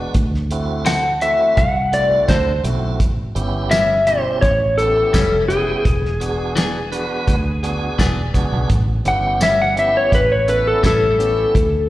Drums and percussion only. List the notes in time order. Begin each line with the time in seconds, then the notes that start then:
0.14 kick, closed hi-hat
0.34 snare
0.51 closed hi-hat
0.86 snare, closed hi-hat, tambourine
1.21 closed hi-hat
1.57 kick, closed hi-hat
1.93 closed hi-hat
2.29 kick, snare, closed hi-hat, tambourine
2.64 closed hi-hat
3.00 kick, closed hi-hat
3.36 closed hi-hat
3.71 snare, closed hi-hat, tambourine
4.07 closed hi-hat
4.42 kick, closed hi-hat
4.78 closed hi-hat
5.14 kick, snare, closed hi-hat, tambourine
5.50 closed hi-hat
5.85 kick, closed hi-hat
6.05 snare
6.21 closed hi-hat
6.57 snare, closed hi-hat, tambourine
6.92 closed hi-hat
7.28 kick, closed hi-hat
7.64 closed hi-hat
7.99 kick, snare, closed hi-hat, tambourine
8.34 kick, closed hi-hat
8.70 kick, closed hi-hat
9.05 closed hi-hat
9.41 snare, closed hi-hat, tambourine
9.77 closed hi-hat
10.12 kick, closed hi-hat
10.48 closed hi-hat
10.84 kick, snare, closed hi-hat, tambourine
11.20 closed hi-hat
11.55 kick, closed hi-hat